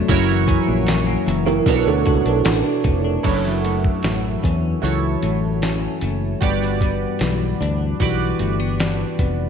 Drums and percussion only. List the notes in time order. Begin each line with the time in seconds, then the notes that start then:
0.09 kick, closed hi-hat
0.29 snare
0.48 kick, closed hi-hat
0.86 snare, closed hi-hat
1.28 closed hi-hat
1.48 closed hi-hat
1.66 kick, closed hi-hat
2.05 kick, closed hi-hat
2.26 closed hi-hat
2.45 snare, closed hi-hat
2.84 kick, closed hi-hat
3.24 kick, closed hi-hat, crash
3.45 snare
3.65 closed hi-hat
3.85 kick
4.03 snare, closed hi-hat
4.44 kick, closed hi-hat
4.85 closed hi-hat
5.23 closed hi-hat
5.62 snare, closed hi-hat
6.01 closed hi-hat
6.42 kick, closed hi-hat
6.62 snare
6.81 kick, closed hi-hat
7.19 snare, closed hi-hat
7.62 closed hi-hat
8.00 kick, closed hi-hat
8.39 closed hi-hat
8.80 snare, closed hi-hat
9.19 kick, closed hi-hat